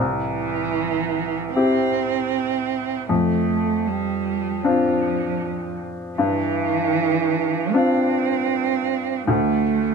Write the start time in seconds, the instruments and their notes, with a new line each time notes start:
Already playing: upright piano C2
0.00 cello E3
1.55 cello C4, upright piano C4 E4 G4
3.09 upright piano F2, cello A3
3.87 cello G3
4.64 cello F3, upright piano C4 D4 F4
6.18 upright piano G2, cello E3
7.73 upright piano C4 D4 F4, cello C4
9.27 upright piano D2, cello A3